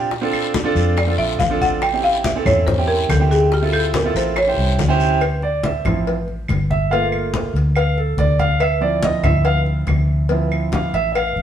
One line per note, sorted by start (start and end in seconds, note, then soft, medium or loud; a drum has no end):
0.00 0.69 A#2 medium
0.11 high bongo medium
0.11 high conga soft
0.11 long guiro medium
0.21 0.52 C4 loud
0.21 0.52 D4 medium
0.21 0.52 F4 medium
0.21 0.52 A4 loud
0.33 high bongo soft
0.33 high conga soft
0.33 claves medium
0.54 high bongo medium
0.54 high conga loud
0.54 short guiro medium
0.64 0.94 C4 loud
0.64 0.94 D4 loud
0.64 0.94 F4 medium
0.64 0.95 A4 loud
0.75 1.15 F2 loud
0.75 high bongo soft
0.75 high conga soft
0.75 short guiro medium
0.97 1.18 D5 medium
0.97 high bongo medium
0.97 high conga soft
0.97 long guiro medium
0.97 claves medium
1.07 1.37 C4 medium
1.07 1.37 D4 medium
1.07 1.37 F4 medium
1.07 1.38 A4 medium
1.18 1.38 A#1 medium
1.18 1.39 E5 medium
1.18 high conga soft
1.39 2.39 A1 medium
1.39 1.60 F5 medium
1.39 high bongo soft
1.39 low bongo medium
1.39 high conga medium
1.39 short guiro medium
1.50 1.80 C4 medium
1.50 1.80 D4 medium
1.50 1.80 F4 medium
1.50 1.80 A4 loud
1.61 1.82 F#5 loud
1.61 high bongo soft
1.61 high conga medium
1.61 short guiro medium
1.82 2.03 G5 loud
1.82 high bongo medium
1.82 high conga soft
1.82 long guiro medium
1.82 claves medium
1.93 2.23 C4 medium
1.93 2.23 C#4 medium
1.93 2.23 E4 medium
1.93 2.23 G4 medium
2.03 2.24 F5 loud
2.03 high bongo soft
2.03 high conga soft
2.24 2.45 E5 medium
2.24 high bongo medium
2.24 high conga loud
2.24 short guiro medium
2.35 2.65 C4 medium
2.35 2.65 C#4 medium
2.35 2.65 E4 medium
2.35 2.66 A4 medium
2.45 3.05 E2 loud
2.45 2.66 C#5 loud
2.45 high bongo soft
2.45 high conga soft
2.45 low conga medium
2.45 short guiro medium
2.45 claves medium
2.67 2.87 C5 medium
2.67 high bongo medium
2.67 high conga soft
2.67 low conga medium
2.67 long guiro medium
2.78 3.08 C4 medium
2.78 3.07 C#4 medium
2.78 3.08 E4 medium
2.78 3.08 G4 medium
2.88 3.08 A#4 loud
2.88 high conga soft
3.09 4.09 D2 loud
3.09 3.30 A4 medium
3.09 high bongo soft
3.09 low bongo medium
3.09 high conga medium
3.09 short guiro medium
3.09 claves medium
3.20 3.50 C4 medium
3.20 3.50 C#4 medium
3.20 3.50 E4 medium
3.20 3.50 G4 medium
3.31 3.51 G#4 medium
3.31 high bongo soft
3.31 short guiro medium
3.52 3.73 G4 medium
3.52 high bongo medium
3.52 high conga soft
3.52 long guiro medium
3.62 3.92 C4 medium
3.62 3.92 E4 medium
3.62 3.92 F4 medium
3.62 3.92 A4 medium
3.73 3.94 A4 loud
3.73 high bongo soft
3.73 high conga soft
3.73 claves medium
3.94 4.15 A#4 medium
3.94 high bongo medium
3.94 high conga loud
3.94 short guiro medium
4.04 4.34 C4 medium
4.04 4.34 E4 medium
4.04 4.35 F4 medium
4.04 4.35 A4 medium
4.15 4.55 A1 loud
4.15 4.37 C5 medium
4.15 high bongo soft
4.15 high conga soft
4.15 short guiro medium
4.36 5.07 C#5 medium
4.36 high bongo medium
4.36 high conga soft
4.36 long guiro medium
4.36 claves medium
4.47 4.77 C#4 medium
4.47 4.77 E4 medium
4.47 4.78 G4 medium
4.47 4.78 C5 medium
4.57 4.77 C2 medium
4.57 high conga soft
4.78 5.79 D2 loud
4.78 high bongo soft
4.78 low bongo medium
4.78 high conga medium
4.78 short guiro medium
4.88 5.19 C#4 loud
4.88 5.19 E4 medium
4.88 5.19 G4 loud
4.88 5.20 C5 loud
5.00 high bongo soft
5.00 short guiro medium
5.21 cowbell loud
5.21 high conga soft
5.21 claves medium
5.42 5.64 D5 medium
5.42 high conga soft
5.64 5.85 E5 medium
5.64 cowbell medium
5.64 high conga medium
5.85 6.45 A1 loud
5.85 6.14 F3 medium
5.85 6.14 C4 medium
5.85 6.14 E4 medium
5.85 cowbell medium
5.85 high conga soft
5.85 low conga medium
5.85 claves medium
6.07 cowbell loud
6.07 high conga soft
6.28 high conga soft
6.48 7.49 G1 medium
6.48 cowbell medium
6.48 high conga medium
6.48 claves medium
6.70 6.91 E5 medium
6.70 high conga medium
6.90 7.52 A3 medium
6.90 7.52 A#3 medium
6.90 7.52 F4 medium
6.90 7.04 F5 medium
6.90 cowbell loud
6.90 high conga soft
7.12 high conga soft
7.12 claves medium
7.34 cowbell medium
7.34 high conga medium
7.54 8.14 D2 medium
7.54 cowbell medium
7.54 high conga soft
7.76 7.97 F5 medium
7.76 cowbell loud
7.76 high conga soft
7.76 claves medium
7.98 8.18 A4 medium
7.98 high conga soft
8.17 9.18 D2 medium
8.17 8.39 D5 medium
8.17 cowbell medium
8.17 high conga medium
8.39 8.60 F5 medium
8.39 cowbell medium
8.39 high conga medium
8.60 8.82 E5 medium
8.60 cowbell loud
8.60 high conga soft
8.60 claves medium
8.81 10.28 F3 medium
8.81 10.29 C4 soft
8.81 10.30 E4 medium
8.81 9.03 D5 medium
8.81 high conga soft
9.02 9.25 D#5 medium
9.02 cowbell medium
9.02 high conga medium
9.23 9.84 D2 loud
9.23 9.45 E5 medium
9.23 cowbell medium
9.23 high conga soft
9.23 low conga medium
9.23 claves medium
9.45 9.58 F5 medium
9.45 cowbell loud
9.45 high conga soft
9.66 high conga soft
9.87 10.88 D2 medium
9.87 cowbell medium
9.87 high conga medium
9.87 claves medium
10.29 10.91 F3 medium
10.29 10.91 C4 medium
10.29 10.92 E4 medium
10.29 cowbell loud
10.29 high conga soft
10.52 high conga soft
10.52 claves medium
10.72 10.94 F5 medium
10.72 cowbell medium
10.72 high conga medium
10.93 11.33 A1 loud
10.93 11.11 E5 medium
10.93 cowbell medium
10.93 high conga soft
11.12 11.15 E5 medium
11.12 cowbell loud
11.12 claves medium
11.16 11.42 F5 medium
11.16 high conga soft
11.36 11.42 A1 medium
11.36 high conga soft